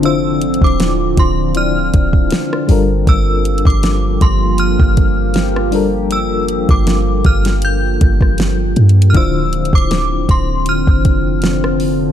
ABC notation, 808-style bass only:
X:1
M:4/4
L:1/16
Q:"Swing 16ths" 1/4=79
K:Dm
V:1 name="808-style bass" clef=bass
F,,,3 D,,,3 D,,,4 D,,,2 z2 G,,,2 | G,,,3 G,,,3 G,,,3 G,,,6- G,,,- | G,,,3 G,,,3 G,,,4 G,,,4 G,,2 | D,,,3 D,,,3 D,,,3 F,,,6- F,,, |]